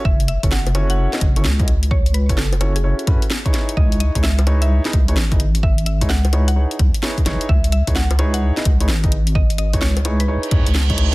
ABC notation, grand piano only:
X:1
M:4/4
L:1/16
Q:"Swing 16ths" 1/4=129
K:C#m
V:1 name="Grand piano"
z3 [CEFAc] z2 [CEFAc]3 [CEFAd] z [CEFAc] z [CEFAd] z2 | z3 [CEFAc] z2 [CEFAc] z [CEFAc] z [CEFAB] z2 [DEGBc]3- | [DEGBc]3 [DEGBc] z2 [DEGBc]3 [DEGBd] z [DEGBc] z [DEGBd] z2 | z3 [DEGBc] z2 [DEGBc] z [DEGBc] z3 [DEGBc] z [DEGBc] z |
z3 [DEGBc] z2 [DEGBc]3 [DEGBd] z [DEGBc] z [DEGBd] z2 | z3 [DEGBc] z2 [DEGBc] z [DEGBc] z [DEGBc] z2 [DEGBc]3 |]